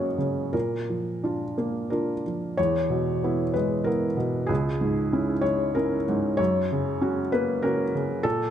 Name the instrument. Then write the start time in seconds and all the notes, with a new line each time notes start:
felt piano
Already playing: F#2 C#3 A#3 C#4 F#4 C#5 D#5
0.18 C#3
0.53 A#2 A#4
0.89 F3
1.24 D4 F4
1.58 A#3
1.90 D4 F4 A#4
2.27 F3
2.57 E2 C#5
2.90 B2
3.24 B3 E4
3.54 G#3 B4
3.84 B3 E4 A#4
4.17 B2
4.47 C#2 G#4
4.81 G#2
5.13 C#4 E4
5.41 G#3 C#5
5.75 C#4 E4 A#4
6.09 G#2
6.37 F#2 C#5
6.72 C#3
7.01 C#4 F#4
7.32 A#3 B4
7.62 C#4 F#4 A#4
7.95 C#3
8.23 A#2 A4